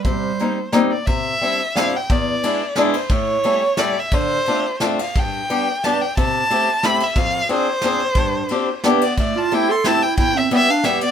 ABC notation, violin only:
X:1
M:3/4
L:1/8
Q:1/4=178
K:Cm
V:1 name="Violin"
c4 z d | [K:C] e4 f g | d4 z c | ^c4 d e |
c4 z f | g4 a g | a4 b e | f2 c4- |
c4 z d | d a g c' a g | g e e f e d |]